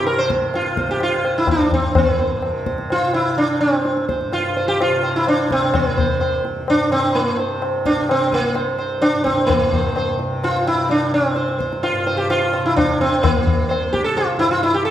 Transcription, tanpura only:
Already playing: C2 G2 C3
0.55 C3
1.18 C2
1.79 G2
2.40 C3
3.02 C3
3.62 C2
4.25 G2
4.85 C3
5.47 C3
6.08 C2
6.69 G2
7.31 C3
7.92 C3
8.51 C2
9.13 G2
9.49 G2
10.10 C3
10.70 C3
11.30 C2
11.93 G2
12.54 C3
13.15 C3
13.76 C2
14.37 G2

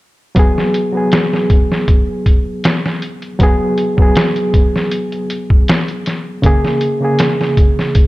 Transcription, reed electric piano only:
0.35 F#3 B3
0.39 G#4
0.93 F#3 B3
0.97 G#4
3.39 F#3 B3
3.43 G#4
3.97 F#3 B3
4.02 G#4
6.42 C#3 A#3
6.46 G#4
7.00 C#3 A#3
7.05 G#4

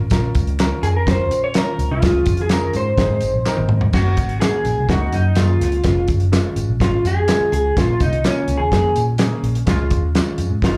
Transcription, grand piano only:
0.11 C#4 F4 A#4
0.60 C#4 F4 A#4
1.07 C#4 F4 A#4
1.56 C#4 F4 A#4
2.03 C#4 F4 G#4
2.52 C#4 F4 G#4
2.99 C4 D#4 G#4
3.46 C4 D#4 A#4
3.95 A#3 C#4 F#4
4.42 G#3 C#4 F#4
4.48 A#3
4.90 A#3 C#4 D#4
5.37 A#3 C#4 G#4
5.84 G#3 C#4 F4
6.32 G#3 C#4 F4
6.80 G#3 C#4 F4
7.28 G#3 C#4 F4
7.77 A#3 C#4 F4
8.25 A#3 C#4 F4
8.72 A#3 C#4 G#4
9.19 A#3 C#4 G#4
9.68 G#3 C#4 F4
10.15 G#3 C#4 F4
10.63 G#3 C#4 D#4

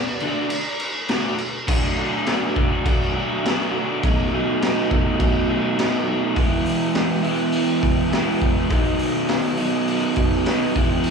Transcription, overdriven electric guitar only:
0.22 D3 A3 D4 F#4
1.09 D3 A3 D4 F#4
1.68 D3 F#3 A3 D4 F#4
1.96 D3 F#3 A3 D4 F#4
2.25 D3 F#3 A3 D4 F#4
2.55 D3 F#3 A3 D4 F#4
2.84 D3 F#3 A3 D4 F#4
3.14 D3 F#3 A3 D4 F#4
3.43 D3 F#3 A3 D4 F#4
3.73 D3 F#3 A3 D4 F#4
4.03 B2 F#3 A3 D#4
4.31 B2 F#3 A3 D#4
4.62 B2 F#3 A3 D#4
4.91 B2 F#3 A3 D#4
5.19 B2 F#3 A3 D#4
5.48 B2 F#3 A3 D#4
5.78 B2 F#3 A3 D#4
6.07 B2 F#3 A3 D#4
6.36 E3 G#3 B3 E4
7.22 E3 G#3 B3 E4
8.10 E3 G#3 B3 E4
8.70 B2 D#3 F#3 B3 D#4
9.58 B2 D#3 F#3 B3 D#4
10.45 B2 D#3 F#3 B3 D#4
10.75 E3 G#3 B3 E4

